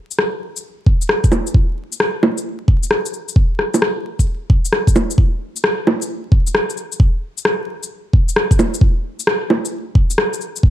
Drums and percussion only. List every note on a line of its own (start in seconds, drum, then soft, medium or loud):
0.11 shaker soft
0.19 cross-stick medium
0.56 shaker soft
0.86 kick medium
1.02 shaker soft
1.09 cross-stick loud
1.24 kick medium
1.24 shaker soft
1.32 low bongo medium
1.32 shaker soft
1.47 shaker medium
1.55 kick loud
1.92 shaker medium
2.00 cross-stick medium
2.23 low bongo medium
2.38 shaker soft
2.68 kick medium
2.83 shaker medium
2.91 cross-stick medium
3.06 shaker soft
3.13 shaker soft
3.28 shaker medium
3.36 kick loud
3.59 cross-stick medium
3.74 low bongo soft
3.74 shaker medium
3.82 cross-stick loud
4.19 kick medium
4.19 shaker medium
4.50 kick loud
4.65 shaker medium
4.73 cross-stick medium
4.87 kick medium
4.87 shaker soft
4.96 low bongo medium
4.96 shaker soft
5.11 shaker medium
5.18 kick loud
5.56 shaker medium
5.64 cross-stick loud
5.87 low bongo medium
6.02 shaker medium
6.32 kick loud
6.47 shaker medium
6.55 cross-stick loud
6.70 shaker soft
6.77 shaker soft
6.92 shaker medium
7.00 kick loud
7.38 shaker medium
7.45 cross-stick loud
7.83 shaker medium
8.13 kick loud
8.29 shaker medium
8.36 cross-stick loud
8.51 kick loud
8.51 shaker soft
8.59 low bongo medium
8.59 shaker soft
8.74 shaker medium
8.81 kick loud
9.20 shaker medium
9.27 cross-stick loud
9.50 low bongo medium
9.65 shaker medium
9.95 kick loud
10.10 shaker medium
10.18 cross-stick loud
10.33 shaker soft
10.41 shaker soft
10.56 shaker medium
10.63 kick loud